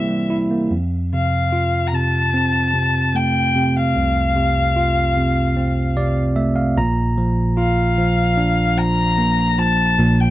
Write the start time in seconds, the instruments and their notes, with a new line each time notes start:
Already playing: tine electric piano C3 E3 G3 A#3 C4 E4 G4 C5, violin E5
0.08 tine electric piano G3
0.30 tine electric piano E4
0.51 tine electric piano A#3
0.71 tine electric piano F2
1.13 tine electric piano C3, violin F5
1.52 tine electric piano F4
1.87 violin A#5
1.93 tine electric piano C3, violin A5
2.34 tine electric piano C4
2.74 tine electric piano C3
3.14 tine electric piano A3, violin G5
3.55 tine electric piano C3
3.76 violin F5
3.96 tine electric piano C2
4.36 tine electric piano C3
4.76 tine electric piano F4
5.17 tine electric piano C3
5.57 tine electric piano C4
5.96 tine electric piano C3 D5
6.36 tine electric piano A3 E5
6.56 tine electric piano F5
6.77 tine electric piano A#1 A#2 A#5
7.18 tine electric piano F3
7.57 tine electric piano F4, violin F5
7.98 tine electric piano F3
8.37 tine electric piano D4
8.77 tine electric piano F3, violin A#5
9.18 tine electric piano A#3
9.58 tine electric piano F3, violin A5
9.99 tine electric piano A#1 A#2
10.20 violin G5